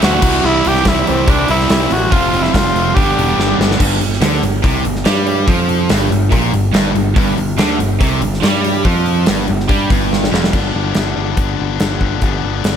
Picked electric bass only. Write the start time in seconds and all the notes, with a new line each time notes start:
0.03 D2
0.22 C2
0.44 C2
0.66 C2
0.86 C2
1.09 C2
1.27 C2
1.49 C2
1.70 C2
1.91 A1
2.13 F1
2.33 F1
2.55 F1
2.74 F1
2.97 G1
3.17 E1
3.37 G1
3.58 G1
3.80 G1
4.01 G1
4.21 D2
4.42 G1
4.64 C2
4.85 G1
5.06 G2
5.48 F2
5.90 G1
6.11 G1
6.32 A#1
6.53 G1
6.73 G1
6.95 G1
7.17 G1
7.38 G1
7.58 D2
7.79 G1
8.01 C2
8.21 G1
8.42 G2
8.86 F2
9.28 G1
9.50 G1
9.70 G2
9.91 G1
10.33 F1
10.53 G1
10.75 G1
10.95 G1
11.16 G1
11.38 G1
11.60 G1
11.81 G1
12.01 G1
12.23 G1
12.44 G1
12.64 G1